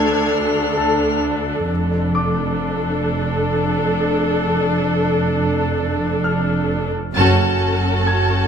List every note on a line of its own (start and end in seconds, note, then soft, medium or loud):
0.00 1.65 D2 soft
0.00 1.66 D2 soft
0.00 1.65 D4 soft
0.00 1.65 A4 soft
0.00 1.21 F6 soft
0.00 0.30 G#6 soft
0.77 3.47 A4 soft
0.77 3.47 A5 soft
1.69 6.91 F1 soft
1.69 6.91 F2 soft
1.69 6.91 D4 soft
1.69 6.91 A4 soft
2.15 4.84 D6 soft
6.24 7.11 F6 soft
7.14 8.47 F#1 soft
7.14 8.47 F#2 soft
7.14 8.47 C#4 soft
7.14 8.47 F#4 soft
7.14 8.47 A4 soft
7.14 8.47 A5 soft
8.07 8.47 G#6 soft